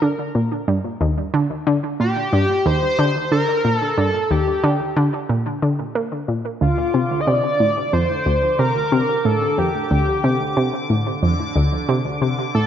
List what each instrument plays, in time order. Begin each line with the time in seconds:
Already playing: analog synth lead A#4
0.02 synth arpeggio sound D3
0.35 synth arpeggio sound A#2
0.68 synth arpeggio sound G2
1.01 synth arpeggio sound D#2
1.34 synth arpeggio sound D3
1.67 synth arpeggio sound D3
2.00 synth arpeggio sound A#2, analog synth lead G4
2.33 synth arpeggio sound G2
2.66 synth arpeggio sound D#2, analog synth lead C5
2.99 synth arpeggio sound D3
3.32 synth arpeggio sound D3, analog synth lead A#4
3.65 synth arpeggio sound A#2
3.76 analog synth lead A4
3.98 synth arpeggio sound G2, analog synth lead A4
4.31 synth arpeggio sound D#2, analog synth lead G4
4.64 synth arpeggio sound D3
4.96 synth arpeggio sound D3
5.29 synth arpeggio sound A#2
5.62 synth arpeggio sound D3
5.95 synth arpeggio sound A#3
6.28 synth arpeggio sound A#2
6.61 synth arpeggio sound D2, synth texture D3 D6, analog synth lead F4
6.94 synth arpeggio sound C3
7.20 analog synth lead D#5
7.27 synth arpeggio sound C3, analog synth lead D5
7.60 synth arpeggio sound A2
7.93 synth arpeggio sound F2, analog synth lead C5
8.26 synth arpeggio sound D2
8.59 synth arpeggio sound C3, analog synth lead A#4
8.92 synth arpeggio sound C3
9.25 synth arpeggio sound A2, analog synth lead A4
9.58 synth arpeggio sound F2, analog synth lead G4
9.91 synth arpeggio sound D2
10.24 synth arpeggio sound C3
10.57 synth arpeggio sound C3
10.90 synth arpeggio sound A2
11.23 synth arpeggio sound F2
11.56 synth arpeggio sound D2
11.89 synth arpeggio sound C3
12.22 synth arpeggio sound C3
12.55 synth arpeggio sound A2, analog synth lead A4